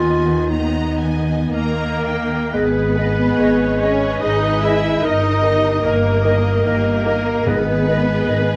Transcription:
0.00 1.52 D#2 soft
0.00 1.46 D#3 soft
0.00 0.48 B3 soft
0.00 0.51 F4 medium
0.00 0.48 D#5 soft
0.00 0.47 G#5 soft
0.49 1.51 B3 soft
0.49 2.05 D#4 soft
0.49 1.51 D#5 soft
0.49 0.98 A#5 medium
1.02 1.53 G#5 soft
1.46 1.53 B3 soft
1.52 2.32 D#2 soft
1.52 2.32 D#3 soft
1.52 2.53 A#3 medium
1.52 2.34 A#3 soft
1.52 2.49 A#4 soft
1.52 2.55 A#4 soft
1.52 2.31 D#5 soft
1.52 2.04 A#5 soft
2.05 2.52 G5 soft
2.52 3.30 G#1 medium
2.52 2.69 G#3 soft
2.52 3.81 B3 medium
2.52 4.98 G#4 soft
2.52 2.70 G#4 soft
2.52 2.95 G#4 medium
2.52 3.80 B4 medium
2.52 3.82 B4 medium
2.52 7.43 D#5 soft
2.52 2.63 D#5 soft
2.96 3.12 G#3 soft
2.96 3.14 G#4 soft
2.96 3.79 G#4 soft
2.96 3.40 B4 medium
2.96 3.79 D#5 soft
2.96 3.08 D#5 soft
3.39 4.12 G#1 soft
3.39 3.55 G#3 soft
3.39 3.57 G#4 soft
3.39 3.81 C#5 soft
3.39 3.49 D#5 soft
3.80 3.97 G#3 soft
3.80 4.21 C#4 medium
3.80 4.61 G#4 soft
3.80 3.98 G#4 soft
3.80 5.03 B4 medium
3.80 4.22 C#5 soft
3.80 4.22 C#5 medium
3.80 4.61 D#5 soft
3.80 3.91 D#5 soft
4.21 4.93 G#1 soft
4.21 4.38 G#3 soft
4.21 4.62 D#4 medium
4.21 4.39 G#4 soft
4.21 4.64 D#5 medium
4.21 4.62 D#5 medium
4.21 4.32 D#5 soft
4.62 4.79 G#3 soft
4.62 5.03 E4 medium
4.62 5.02 G#4 soft
4.62 4.80 G#4 soft
4.62 5.02 D#5 soft
4.62 4.73 D#5 soft
4.62 5.02 E5 medium
4.62 5.03 E5 medium
5.02 5.75 G1 medium
5.02 5.19 D#3 soft
5.02 5.84 D#4 medium
5.02 7.43 A#4 medium
5.02 5.42 A#4 soft
5.02 5.44 A#4 medium
5.02 5.20 A#4 soft
5.02 5.84 D#5 medium
5.02 5.42 D#5 soft
5.02 5.86 D#5 medium
5.02 5.13 D#5 soft
5.43 5.60 D#3 soft
5.43 5.84 G4 soft
5.43 6.23 A#4 soft
5.43 5.60 A#4 soft
5.43 6.23 D#5 soft
5.43 5.54 D#5 soft
5.84 6.56 G1 medium
5.84 6.00 D#3 soft
5.84 6.64 A#3 medium
5.84 6.64 A#4 medium
5.84 6.24 A#4 medium
5.84 6.65 A#4 medium
5.84 6.00 A#4 soft
5.84 5.94 D#5 soft
6.25 6.41 D#3 soft
6.25 7.04 A#4 soft
6.25 6.41 A#4 soft
6.25 6.65 D#5 medium
6.25 7.04 D#5 soft
6.25 6.35 D#5 soft
6.65 7.38 G1 soft
6.65 6.82 D#3 soft
6.65 7.46 A#3 medium
6.65 7.06 G4 medium
6.65 7.45 A#4 medium
6.65 6.81 A#4 soft
6.65 7.49 A#4 medium
6.65 6.75 D#5 soft
7.05 7.22 D#3 soft
7.05 7.46 A#4 soft
7.05 7.22 A#4 soft
7.05 7.47 A#4 medium
7.05 7.46 D#5 soft
7.05 7.16 D#5 soft
7.46 8.19 G#1 medium
7.46 8.56 G#2 medium
7.46 7.63 D#3 soft
7.46 8.56 B3 medium
7.46 7.88 G#4 medium
7.46 8.56 G#4 medium
7.46 7.63 G#4 soft
7.46 8.56 B4 medium
7.46 8.56 D#5 medium
7.46 7.57 D#5 soft
7.87 8.05 D#3 soft
7.87 8.04 G#4 soft
7.87 8.56 G#4 soft
7.87 8.56 B4 medium
7.87 7.97 D#5 soft
7.87 8.56 D#5 soft
8.28 8.56 G#1 medium
8.28 8.44 D#3 soft
8.28 8.44 G#4 soft
8.28 8.37 D#5 soft

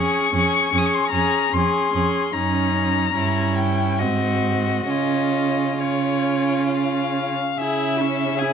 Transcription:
0.00 0.33 C#4 soft
0.00 0.34 G#4 soft
0.00 0.79 C#6 medium
0.33 0.41 F2 soft
0.33 0.72 C#4 soft
0.33 0.73 G#4 soft
0.73 0.81 F2 soft
0.73 1.11 C#4 soft
0.73 1.12 G#4 soft
0.78 0.87 D#6 soft
0.85 0.96 C#6 medium
0.94 1.06 C6 medium
1.04 1.10 C#6 soft
1.10 1.21 F2 soft
1.10 1.51 C#4 soft
1.10 1.53 G#4 soft
1.10 1.55 A#5 medium
1.52 1.61 F2 soft
1.52 1.92 C#4 soft
1.52 2.34 C6 medium
1.56 1.94 G#4 soft
1.94 2.02 F2 soft
1.94 2.33 C#4 soft
1.94 2.34 G#4 soft
2.33 3.11 F#2 soft
2.33 3.12 C#4 soft
2.33 3.13 D#4 soft
2.33 3.56 A#5 medium
3.15 4.02 G2 soft
3.15 4.03 C#4 soft
3.15 4.02 E4 soft
3.57 4.01 G5 soft
3.99 4.89 G#2 soft
3.99 4.89 C4 soft
3.99 4.92 F#4 soft
3.99 4.86 D#5 soft
4.86 7.34 C#3 soft
4.86 5.79 C#4 soft
4.86 5.78 F4 soft
4.86 5.81 D#5 soft
5.79 7.35 C#4 soft
5.79 7.34 F4 soft
5.79 6.70 C#5 soft
6.70 7.59 F5 soft
7.58 8.53 C#3 soft
7.58 8.02 E4 soft
7.58 8.00 G#4 soft
7.58 8.41 E5 medium
7.98 8.43 C#4 soft
7.98 8.39 E4 soft
8.37 8.53 G#4 soft
8.37 8.53 G#5 medium
8.41 8.53 E4 soft

